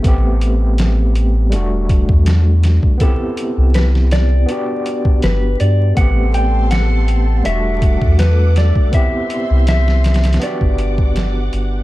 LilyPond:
<<
  \new Staff \with { instrumentName = "String machine" } { \time 4/4 \key a \dorian \tempo 4 = 81 r1 | r1 | <a' a'' c'''>2 <a' fis'' d'''>2 | <e'' c'''>2 <fis'' d'''>2 | }
  \new Staff \with { instrumentName = "Clean electric guitar" } { \time 4/4 \key a \dorian r1 | a'4 b'8 d''4. b'8 d''8 | fis''8 g''8 fis''4 e''4 b'8 d''8 | e''4 e''4 d''4. r8 | }
  \new Staff \with { instrumentName = "Tine electric piano" } { \time 4/4 \key a \dorian <a b c' g'>2 <g a d' fis'>2 | <b c' e' g'>2 <b d' fis' g'>2 | <a b c' g'>2 <g a d' fis'>2 | <b c' e' g'>2 <b d' fis' g'>2 | }
  \new Staff \with { instrumentName = "Sub bass" } { \clef bass \time 4/4 \key a \dorian a,,2 e,,8. e,4 r16 | r8. c,4~ c,16 r4 g,,8 g,8 | a,,2 e,,8. e,4 r16 | r8. c,4~ c,16 r16 g,,4~ g,,16 g,,8 | }
  \new DrumStaff \with { instrumentName = "Drums" } \drummode { \time 4/4 <hh bd>8 hh8 <hh sn>8 hh8 hh8 <hh bd>16 bd16 <hh sn>8 <hh sn>16 bd16 | <hh bd>8 hh8 <hh sn>16 sn16 <hh sn>8 hh8 hh16 bd16 <hh sn>8 hh8 | <hh bd>8 hh8 <hh sn>8 hh8 hh8 <hh bd>16 bd16 <hh sn>8 <hh sn>16 bd16 | <hh bd>8 hh8 <hh sn>16 sn16 <hh sn>32 <hh sn>32 <hh sn>32 <hh sn>32 hh16 bd16 hh16 bd16 <hh sn>8 hh8 | }
>>